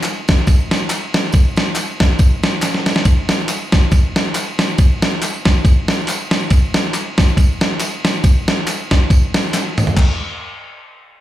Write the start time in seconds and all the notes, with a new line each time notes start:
0.03 clap, ride, tambourine
0.28 kick, snare, ride, tambourine
0.47 kick, ride, tambourine
0.71 snare, ride, tambourine
0.90 clap, ride, tambourine
1.14 snare, ride, tambourine
1.32 kick, ride, tambourine
1.56 snare, ride, tambourine
1.75 clap, ride, tambourine
2.00 kick, snare, ride, tambourine
2.19 kick, ride, tambourine
2.43 snare, ride, tambourine
2.62 snare, clap, ride, tambourine
2.74 snare
2.86 snare, ride, tambourine
2.96 snare
3.05 kick, ride, tambourine
3.29 snare, ride, tambourine
3.48 clap, ride, tambourine
3.72 kick, snare, ride, tambourine
3.91 kick, ride, tambourine
4.16 snare, ride, tambourine
4.35 clap, ride, tambourine
4.59 snare, ride, tambourine
4.78 kick, ride, tambourine
5.02 snare, ride, tambourine
5.22 clap, ride, tambourine
5.45 kick, snare, ride, tambourine
5.65 kick, ride, tambourine
5.88 snare, ride, tambourine
6.07 clap, ride, tambourine
6.31 snare, ride, tambourine
6.50 kick, ride, tambourine
6.74 snare, ride, tambourine
6.94 clap, ride, tambourine
7.18 kick, snare, ride, tambourine
7.37 kick, ride, tambourine
7.61 snare, ride, tambourine
7.80 clap, ride, tambourine
8.05 snare, ride, tambourine
8.24 kick, ride, tambourine
8.48 snare, ride, tambourine
8.67 clap, ride, tambourine
8.91 kick, snare, ride, tambourine
9.10 kick, ride, tambourine
9.34 snare, ride, tambourine
9.53 snare, clap, ride, tambourine
9.78 mid tom, ride, tambourine
9.87 floor tom
9.96 kick, clap, crash